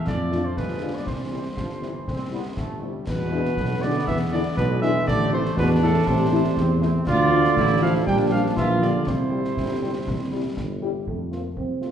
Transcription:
Already playing: trombone section A3
0.07 tuba F2, trombone section F3, cornet D5, concert bass drum, snare
0.32 french horn section A3 D4 F4, snare
0.45 cornet C5
0.57 tuba G1, trombone section G#3, cornet B4, concert bass drum, snare
0.82 french horn section G#3 D4 F4
0.96 cornet D5
1.06 tuba C2, trombone section E3 G3, cornet C5, concert bass drum, snare
1.32 french horn section G3 C4 E4
1.57 tuba G1, trombone section F3, concert bass drum, snare
1.69 snare
1.82 trombone section E3, french horn section G3 C4 E4, snare
2.08 tuba C2, trombone section C4, concert bass drum, snare
2.32 french horn section G3 C4 E4, trombone section B3
2.57 tuba G1, trombone section A3, concert bass drum, snare
2.83 trombone section G3, french horn section G3 C4 E4
3.07 tuba E2, euphonium B2, cornet B4, concert bass drum, snare, crash
3.32 french horn section G#3 D4 E4
3.45 snare
3.57 tuba B1, trombone section B3, concert bass drum, snare
3.82 euphonium D3, french horn section G#3 D4 E4, cornet D5
4.07 tuba E2, euphonium E3, cornet E5, concert bass drum, snare
4.32 euphonium D3, french horn section G#3 D4 E4, cornet D5
4.57 tuba B1, euphonium B2, trombone section G#3, cornet B4, concert bass drum, snare
4.82 euphonium E3, french horn section G#3 D4 E4, cornet E5, snare
5.07 tuba A1, euphonium D3, trombone section A3, cornet D5, concert bass drum, snare
5.31 euphonium C3, french horn section A3 E4, cornet C5
5.45 snare
5.57 tuba E2, euphonium B2, trombone section D4, cornet B4, concert bass drum, snare
5.82 euphonium A2, french horn section A3 E4, cornet A4
6.07 tuba A1, euphonium C3, cornet C5, concert bass drum, snare
6.32 french horn section A3 E4
6.56 tuba E2, trombone section C4, concert bass drum, snare
6.82 french horn section A3 E4, snare
7.06 tuba D2, euphonium D3, trombone section F4, cornet D5, concert bass drum, snare, crash
7.32 french horn section A3 D4 F4
7.44 snare
7.57 tuba A1, trombone section E4, concert bass drum, snare
7.82 euphonium F3, french horn section A3 D4 F4, cornet F5
8.06 tuba A#1, euphonium G3, trombone section D4, cornet G5, concert bass drum, snare
8.31 euphonium F3, french horn section G3 D4 G4, cornet F5
8.57 tuba A#1, euphonium E3, trombone section F4, cornet E5, concert bass drum, snare
8.82 euphonium D3, french horn section G3 D4 G4, cornet D5, snare
9.07 tuba C2, euphonium C3, trombone section E4, cornet C5, concert bass drum, snare
9.32 french horn section G3 E4 G4
9.44 snare
9.57 tuba G1, concert bass drum, snare
9.82 french horn section G3 E4 G4
10.07 tuba C2, concert bass drum, snare
10.33 french horn section G3 E4 G4
10.57 tuba G1, concert bass drum, snare
10.82 french horn section G3 E4 G4
11.07 tuba F2, euphonium A3, concert bass drum
11.32 french horn section A3 C4 F4, euphonium A#3, cornet C5, snare
11.57 tuba C2, euphonium C4, concert bass drum
11.81 french horn section A3 C4 F4, cornet C5, snare

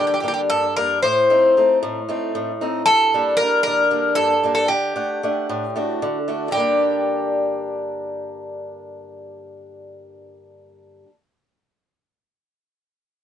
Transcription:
Already playing: steel-string acoustic guitar D3 G3 A#3 D4
0.07 bouzouki G4
0.14 bouzouki G4
0.20 steel-string acoustic guitar G3 A#3, bouzouki G4
0.25 steel-string acoustic guitar D4, bouzouki G4
0.34 bouzouki G4
0.50 steel-string acoustic guitar G2, bouzouki A4
0.76 steel-string acoustic guitar G3 A#3 D4, bouzouki A#4
1.03 steel-string acoustic guitar A2, bouzouki C5
1.30 steel-string acoustic guitar A3 C4 D#4
1.57 steel-string acoustic guitar A3 C4 D#4
1.83 steel-string acoustic guitar A2
2.09 steel-string acoustic guitar A3 C4 D#4
2.35 steel-string acoustic guitar A2
2.61 steel-string acoustic guitar A3 C4 D#4
2.86 steel-string acoustic guitar G2, bouzouki A4
3.14 steel-string acoustic guitar G3 A#3 D4
3.37 steel-string acoustic guitar G3, bouzouki A#4
3.41 steel-string acoustic guitar A#3 D4
3.63 steel-string acoustic guitar D3, bouzouki A#4
3.91 steel-string acoustic guitar G3 A#3 D4
4.15 steel-string acoustic guitar G2, bouzouki A4
4.44 steel-string acoustic guitar G3 A#3 D4
4.55 bouzouki A4
4.68 steel-string acoustic guitar D3, bouzouki G4
4.96 steel-string acoustic guitar A3 D4 F#5
5.23 steel-string acoustic guitar A3 D4 F#5
5.49 steel-string acoustic guitar A2
5.76 steel-string acoustic guitar A3 D4 F#4
6.02 steel-string acoustic guitar D3
6.28 steel-string acoustic guitar A3 D4 F#4
6.48 steel-string acoustic guitar G2 D3, bouzouki G4
6.54 steel-string acoustic guitar G3 A#3
6.60 steel-string acoustic guitar D4

